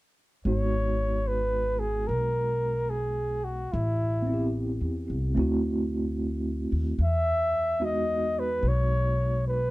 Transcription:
0.45 upright bass G#1, tine electric piano G#3 B3 D#4 F#4, flugelhorn C#5
1.27 flugelhorn B4
1.79 flugelhorn G#4
2.07 upright bass B1, flugelhorn A#4
2.90 flugelhorn G#4
3.44 flugelhorn F#4
3.73 upright bass A1, flugelhorn E4
4.22 tine electric piano B3
4.27 tine electric piano C4 E4
4.33 tine electric piano G4
4.81 upright bass E2
5.10 upright bass C2
5.35 upright bass D2, tine electric piano A3 C4 E4
5.39 tine electric piano F#4
6.72 upright bass D#2
6.99 upright bass E2
7.03 flugelhorn E5
7.80 tine electric piano G#3 B3 D#4 F#4
7.85 flugelhorn D#5
8.40 flugelhorn B4
8.63 upright bass B1
8.68 flugelhorn C#5
9.48 flugelhorn B4

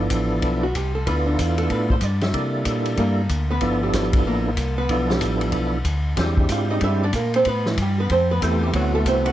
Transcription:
Already playing: tonewheel organ F3
0.00 tonewheel organ B3 D4 E4 A4
0.10 tonewheel organ A1, kick, hi-hat pedal, ride
0.42 tonewheel organ B1, kick, ride
0.63 hollow-body jazz guitar F#4
0.75 tonewheel organ C2, hollow-body jazz guitar G4, kick, hi-hat pedal, ride
0.95 hollow-body jazz guitar A4
1.06 tonewheel organ D2 B3 D4 E4 F4 A4, hollow-body jazz guitar B4, kick, ride
1.26 hollow-body jazz guitar D4
1.39 tonewheel organ E2, hollow-body jazz guitar F4, kick, hi-hat pedal, ride
1.58 hollow-body jazz guitar A4, ride
1.70 tonewheel organ A2, hollow-body jazz guitar B4, kick, ride
1.90 hollow-body jazz guitar C5, kick
2.01 tonewheel organ G2, hollow-body jazz guitar D5, kick, hi-hat pedal, ride
2.21 hollow-body jazz guitar E5, snare, ride
2.33 tonewheel organ C3 G3 A#3 D4 E4 A4, kick, ride
2.65 tonewheel organ A#2, kick, hi-hat pedal, ride
2.85 ride
2.97 tonewheel organ G2, hollow-body jazz guitar A#3 A#4, kick, ride
3.29 tonewheel organ D2, kick, hi-hat pedal, ride
3.51 hollow-body jazz guitar B3 B4
3.61 tonewheel organ G1 F3 B3 D4 E4 A4, kick, ride
3.83 hollow-body jazz guitar G3 G4
3.93 tonewheel organ G#1, kick, snare, hi-hat pedal, ride
4.13 kick, ride
4.25 tonewheel organ A1, hollow-body jazz guitar A#3 A#4, kick
4.56 tonewheel organ C2, kick, hi-hat pedal, ride
4.78 hollow-body jazz guitar B3 B4
4.88 tonewheel organ B1 F3 B3 D4 E4 A4, kick, ride
5.10 hollow-body jazz guitar G3 G4, snare
5.21 tonewheel organ A1, kick, hi-hat pedal, ride
5.41 ride
5.52 tonewheel organ B1, kick, ride
5.84 tonewheel organ D2, kick, hi-hat pedal, ride
6.16 tonewheel organ E2 G#3 C4 D4 E4 G4, kick, snare, ride
6.37 kick
6.49 tonewheel organ G#2, hollow-body jazz guitar F4 F5, kick, hi-hat pedal, ride
6.70 hollow-body jazz guitar D#4 D#5
6.81 tonewheel organ G2, hollow-body jazz guitar E4 E5, kick, ride
7.03 hollow-body jazz guitar D4 D5
7.13 tonewheel organ A#2, hollow-body jazz guitar A#3 A#4, kick, hi-hat pedal, ride
7.34 hollow-body jazz guitar C4 C5, ride
7.45 tonewheel organ A2, hollow-body jazz guitar B3 B4, kick, ride
7.66 hollow-body jazz guitar E3 E4, snare
7.77 tonewheel organ G2, kick, hi-hat pedal, ride
7.82 hollow-body jazz guitar G3 G4
8.00 hollow-body jazz guitar B3 B4
8.09 tonewheel organ F2, hollow-body jazz guitar C4 C5, kick, ride
8.31 hollow-body jazz guitar B3 B4
8.41 tonewheel organ E2 A3 B3 C4 E4 G4, hollow-body jazz guitar A3 A4, kick, hi-hat pedal, ride
8.63 hollow-body jazz guitar G3 G4
8.72 tonewheel organ D2 A3 B3 C4 E4 F#4, hollow-body jazz guitar F#3 F#4, kick, ride
8.95 hollow-body jazz guitar A3 A4
9.05 tonewheel organ C2, hollow-body jazz guitar C4 C5, kick, hi-hat pedal, ride
9.26 hollow-body jazz guitar F#4 F#5, ride

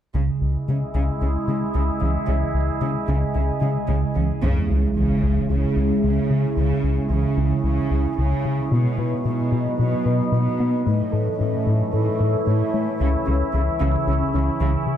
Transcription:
0.14 analog synth bass C#2, cello section C#3, synth pluck C#3, ambient pad G#3 E4 G#4 D#5
0.41 analog synth bass C#2
0.68 analog synth bass C#3, cello section C#3, synth pluck G#3
0.95 analog synth bass C#2, cello section C#3, synth pluck C#3
1.22 analog synth bass C#2, cello section C#3, synth pluck C#4
1.48 analog synth bass C#3, cello section C#3, synth pluck G#3
1.75 analog synth bass C#2, cello section C#3, synth pluck C#3
2.02 analog synth bass C#2, cello section C#3, synth pluck E3
2.28 analog synth bass C#2, cello section C#3, synth pluck C#3
2.54 analog synth bass C#2
2.81 analog synth bass C#3, cello section C#3, synth pluck G#3
3.08 analog synth bass C#2, cello section C#3, synth pluck C#3
3.35 analog synth bass C#2, cello section C#3, synth pluck C#4
3.62 analog synth bass C#3, cello section C#3, synth pluck G#3
3.88 analog synth bass C#2, cello section C#3, synth pluck C#3
4.16 analog synth bass C#2, cello section C#3, synth pluck E3
4.42 analog synth bass C#2, cello section C#3, synth pluck C#3, ambient pad G#3 E4 G#4 C#5, sub drop
4.70 analog synth bass C#2, synth pluck C#4
4.96 analog synth bass C#2, cello section C#3, synth pluck E3
5.23 analog synth bass C#2, synth pluck C#3
5.50 analog synth bass C#2, cello section C#3, synth pluck C#4
5.76 analog synth bass C#2, synth pluck C#4
6.03 analog synth bass C#2, synth pluck C#3, cello section C#3
6.30 analog synth bass C#3
6.57 analog synth bass C#2, cello section C#3, synth pluck C#3
6.84 analog synth bass C#2, synth pluck C#4
7.10 analog synth bass C#2, cello section C#3, synth pluck E3
7.37 analog synth bass C#2, synth pluck C#3
7.64 analog synth bass C#2, cello section C#3, synth pluck C#4
7.91 analog synth bass C#2, synth pluck C#4
8.18 analog synth bass C#2, synth pluck C#3, cello section C#3
8.45 analog synth bass C#3
8.72 cello section B2, analog synth bass B2, ambient pad F#3 D#4 B4 D#5, synth pluck B3
8.98 analog synth bass B2, synth pluck B4
9.25 cello section B2, analog synth bass B2, synth pluck D#4
9.52 analog synth bass B2, synth pluck B3
9.79 cello section B2, analog synth bass B2, synth pluck B4
10.06 analog synth bass B2, synth pluck B4
10.32 analog synth bass B2, cello section B2, synth pluck B3
10.60 analog synth bass B3
10.86 analog synth bass A2, cello section A2, ambient pad E3 E4 A4 C#5, synth pluck A3
11.12 analog synth bass A2, synth pluck A4
11.39 cello section A2, analog synth bass A2, synth pluck C#4
11.66 analog synth bass A2, synth pluck A3
11.93 cello section A2, analog synth bass A2, synth pluck A4
12.19 analog synth bass A2, synth pluck A4
12.47 cello section A2, analog synth bass A2, synth pluck A3
12.74 analog synth bass A3
13.00 analog synth bass C#2, cello section C#3, synth pluck C#3, ambient pad G#4
13.26 analog synth bass C#2, cello section C#3, synth pluck C#4
13.54 analog synth bass C#2, cello section C#3, synth pluck E3
13.80 analog synth bass C#2, cello section C#3, synth pluck C#3
14.07 analog synth bass C#2, cello section C#3, synth pluck C#4
14.34 analog synth bass C#2, cello section C#3, synth pluck C#4
14.60 analog synth bass C#2, cello section C#3, synth pluck C#3
14.87 analog synth bass C#3

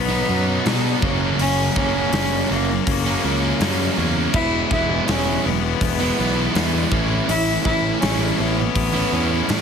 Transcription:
Already playing: fingered electric bass B1, overdriven electric guitar B2 F#3 B3, cello B3
0.08 distorted electric guitar F#3 B3 D#4
0.27 fingered electric bass F#2, distorted electric guitar B2 F#3 B3 D#4
0.47 overdriven electric guitar F#3 B3 D#4
0.65 distorted electric guitar B2 F#3 B3 D#4, fingered electric bass B2, snare, open hi-hat
0.83 distorted electric guitar F#3 B3 D#4
1.01 fingered electric bass F#1, distorted electric guitar F#2 C#3 F#3 A#3 C#4, kick
1.20 distorted electric guitar F#3 A#3 C#4
1.39 fingered electric bass F#1, distorted electric guitar F#2 C#3 F#3 A#3 C#4, cello C#4, open hi-hat
1.76 fingered electric bass F#1, distorted electric guitar C#3 F#3 A#3 C#4, cello C#4, kick, snare
1.95 distorted electric guitar F#3 A#3 C#4
2.12 fingered electric bass F#1, distorted electric guitar F#2 C#3 F#3 A#3 C#4, snare, open hi-hat
2.31 distorted electric guitar F#3 A#3 C#4
2.49 fingered electric bass F#1, overdriven electric guitar C#3 F#3 A#3 C#4, cello A#3, muted distorted electric guitar stroke
2.68 overdriven electric guitar F#3 A#3 C#4
2.87 fingered electric bass F#1, cello A#3, kick, open hi-hat
3.06 distorted electric guitar F#3 A#3 C#4
3.23 fingered electric bass C#2, distorted electric guitar C#3 F#3 A#3 C#4
3.41 overdriven electric guitar F#3 A#3 C#4
3.60 fingered electric bass F#2, distorted electric guitar F#2 C#3 F#3 A#3 C#4, snare, open hi-hat
3.79 distorted electric guitar F#3 A#3 C#4
3.97 fingered electric bass E2, distorted electric guitar C#3 F#3 A#3 C#4
4.16 distorted electric guitar F#3 A#3 C#4
4.34 fingered electric bass E1, distorted electric guitar E3 G#3 B3 E4, cello E4, kick, crash
4.71 fingered electric bass E1, distorted electric guitar E3 G#3 B3 E4, cello E4, kick, snare
4.91 distorted electric guitar G#3 B3 E4
5.08 fingered electric bass E1, distorted electric guitar E3 G#3 B3 E4, cello C#4, snare, open hi-hat
5.28 distorted electric guitar G#3 B3 E4
5.44 fingered electric bass E1, overdriven electric guitar E3 G#3 B3 E4, cello B3, muted distorted electric guitar stroke
5.63 overdriven electric guitar G#3 B3 E4
5.81 fingered electric bass E1, kick, open hi-hat
6.00 distorted electric guitar G#3 B3 E4
6.19 fingered electric bass B1, distorted electric guitar E3 G#3 B3 E4
6.35 overdriven electric guitar G#3 B3 E4
6.54 fingered electric bass E2, distorted electric guitar E3 G#3 B3 E4, snare, open hi-hat
6.73 distorted electric guitar G#3 B3 E4
6.91 fingered electric bass A1, distorted electric guitar A2 E3 A3 C#4 E4, kick
7.09 distorted electric guitar A3 C#4 E4
7.28 fingered electric bass A1, distorted electric guitar A2 E3 A3 C#4 E4, cello E4, open hi-hat
7.64 fingered electric bass A1, distorted electric guitar E3 A3 C#4 E4, cello E4, kick, snare
7.83 distorted electric guitar A3 C#4 E4
8.00 fingered electric bass A1, distorted electric guitar A2 E3 A3 C#4 E4, cello C#4, snare, open hi-hat
8.19 distorted electric guitar A3 C#4 E4
8.37 fingered electric bass A1, overdriven electric guitar E3 A3 C#4 E4, cello B3, muted distorted electric guitar stroke
8.56 overdriven electric guitar A3 C#4 E4
8.75 fingered electric bass A1, kick, open hi-hat
8.93 distorted electric guitar A3 C#4 E4
9.12 fingered electric bass E2, distorted electric guitar E3 A3 C#4 E4
9.30 overdriven electric guitar A3 C#4 E4
9.48 distorted electric guitar A2 E3 A3 C#4 E4, fingered electric bass A2, snare, open hi-hat

